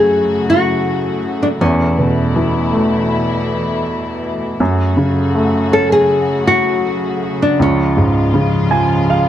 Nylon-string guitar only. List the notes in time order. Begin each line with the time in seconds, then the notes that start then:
Already playing: G#4
0.50 F#4
1.43 D4
1.61 C#4
5.73 A4
5.92 G#4
6.47 F#4
7.42 D4
7.62 C#4